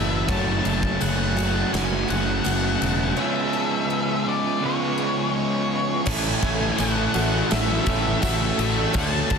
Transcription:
Already playing: fingered electric bass F#1, distorted electric guitar A2 E3 A3, overdriven electric guitar A2 E3 A3 C#4 E4, string machine A3 E5 B5 C#6, twelve-string acoustic guitar F#4 C#5, lead electric guitar E5
0.27 fingered electric bass F#1, distorted electric guitar F#2 C#3 F#3, overdriven electric guitar F#3 A3 C#4, twelve-string acoustic guitar C#5, string machine F#5 C#6, lead electric guitar A5, kick, crash
0.32 overdriven electric guitar F#4
0.65 fingered electric bass F#1, twelve-string acoustic guitar A4, lead electric guitar A5, crash
0.83 kick
1.01 fingered electric bass F#1, twelve-string acoustic guitar G#4, lead electric guitar F#5, tambourine, crash
1.36 distorted electric guitar F#2 C#3 F#3, twelve-string acoustic guitar F#4, lead electric guitar F#5, crash
1.73 fingered electric bass F#1, overdriven electric guitar F#3 A3 C#4 F#4, lead electric guitar G#5, snare, crash
2.08 fingered electric bass F#1, twelve-string acoustic guitar G#4, lead electric guitar F#5, crash
2.44 fingered electric bass F#1, twelve-string acoustic guitar F#4, tambourine, crash
2.82 fingered electric bass E1, crash
3.17 distorted electric guitar C#3 G#3 C#4, overdriven electric guitar C#3 G#3 B3, string machine B4 C#6, twelve-string acoustic guitar C#5, lead electric guitar E5
3.21 overdriven electric guitar F4
3.53 twelve-string acoustic guitar A5
3.90 twelve-string acoustic guitar G#4
4.25 distorted electric guitar C#3 G#3 C#4, lead electric guitar D5
4.61 overdriven electric guitar C#3 G#3 B3 F4
4.65 lead electric guitar C#5
4.98 twelve-string acoustic guitar G#4
5.36 lead electric guitar C#5
6.05 fingered electric bass A1, overdriven electric guitar A2 E3 A3 C#4 E4 A4, distorted electric guitar A2 E3 A3, string machine A4 E5 G#5 C#6, twelve-string acoustic guitar C#5, lead electric guitar G#5, kick, crash
6.41 fingered electric bass A1, distorted electric guitar A2 E3 A3, overdriven electric guitar A3 C#4 E4 A4, twelve-string acoustic guitar A4, kick, crash
6.61 distorted electric guitar E3 A3
6.77 fingered electric bass A1, overdriven electric guitar A2 E3 A3 C#4 E4 A4, distorted electric guitar A2 E3, lead electric guitar F#5, twelve-string acoustic guitar G#5, tambourine, crash
6.81 distorted electric guitar A3
6.96 overdriven electric guitar A3 C#4 E4 A4
7.14 fingered electric bass A1, distorted electric guitar A2 E3 A3, overdriven electric guitar A3 C#4 E4 A4, twelve-string acoustic guitar F#4, crash
7.33 distorted electric guitar E3 A3, overdriven electric guitar A3 C#4 E4 A4
7.51 fingered electric bass A1, lead electric guitar E5, snare, crash
7.69 distorted electric guitar E3 A3, overdriven electric guitar A3 C#4 E4 A4
7.86 fingered electric bass A1, distorted electric guitar A2 E3 A3, overdriven electric guitar A3 C#4 E4, twelve-string acoustic guitar G#5, kick, crash
7.91 overdriven electric guitar A4
8.06 distorted electric guitar E3 A3
8.22 fingered electric bass A1, overdriven electric guitar A2 E3 A3 C#4 E4 A4, distorted electric guitar A2 E3, twelve-string acoustic guitar F#4, lead electric guitar E5, kick, tambourine, crash
8.26 distorted electric guitar A3
8.41 distorted electric guitar E3 A3, overdriven electric guitar A3 C#4 E4 A4
8.58 fingered electric bass A1, distorted electric guitar A2 E3 A3, muted overdriven electric guitar stroke, crash
8.77 distorted electric guitar E3 A3, overdriven electric guitar A3 C#4 E4 A4
8.92 fingered electric bass D2, distorted electric guitar D3 A3, overdriven electric guitar D3 A3, string machine D4 F#5, twelve-string acoustic guitar C#5, lead electric guitar A5, kick, crash
8.97 overdriven electric guitar D4 F#4 A4, distorted electric guitar D4
9.30 fingered electric bass D2, distorted electric guitar D3 A3 D4, overdriven electric guitar A3 D4 F#4 A4, twelve-string acoustic guitar A4, kick, crash

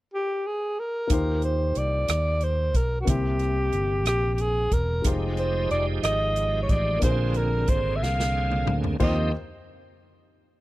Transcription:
0.14 alto saxophone G4
0.46 alto saxophone G#4
0.79 alto saxophone A#4
1.08 fingered electric bass D#2, grand piano D#3 A#3 D#4 F4, kick, closed hi-hat
1.12 grand piano G4 C5
1.42 alto saxophone C5, closed hi-hat
1.75 fingered electric bass C2, alto saxophone D5, closed hi-hat
2.08 fingered electric bass D#2, cross-stick, closed hi-hat
2.41 alto saxophone C5, closed hi-hat
2.74 fingered electric bass B1, alto saxophone A#4, kick, closed hi-hat
3.01 grand piano A#3, alto saxophone F#4
3.06 fingered electric bass C2, grand piano C3 C4 E4 G5, alto saxophone G4, kick, closed hi-hat
3.10 grand piano C5
3.39 cross-stick, closed hi-hat
3.73 fingered electric bass G1, closed hi-hat
4.05 fingered electric bass A#1, alto saxophone G4, cross-stick, closed hi-hat
4.34 alto saxophone G4, closed hi-hat
4.41 alto saxophone G#4
4.72 fingered electric bass E1, alto saxophone A#4, kick, closed hi-hat
5.02 fingered electric bass F1, tonewheel organ F3 G#3 D#4 G4, grand piano G#3 D#4 F4 G4, kick, closed hi-hat
5.07 grand piano C5
5.37 alto saxophone C5, closed hi-hat
5.71 fingered electric bass F1, alto saxophone D5, closed hi-hat
6.03 fingered electric bass G#1, alto saxophone D#5, cross-stick, closed hi-hat
6.36 closed hi-hat
6.63 alto saxophone C#5
6.69 fingered electric bass A1, alto saxophone D5, kick, closed hi-hat
6.99 fingered electric bass A#1, grand piano A#2 A#3 D4 F4, tonewheel organ D3 A#3 G#4, kick, closed hi-hat
7.04 tonewheel organ C4, grand piano G#4 A#4, alto saxophone C5
7.11 grand piano C5
7.34 alto saxophone A#4, closed hi-hat
7.68 alto saxophone C5, kick, closed hi-hat
7.96 alto saxophone E5
8.02 fingered electric bass C2, alto saxophone F5, snare
8.20 snare
8.51 mid tom
8.66 fingered electric bass D2, mid tom
8.84 floor tom
9.00 grand piano D#2 A#3 D#4 F4 G4 C5, fingered electric bass D#2, tonewheel organ F3 C4 D#4 G4, alto saxophone D#5, kick, crash

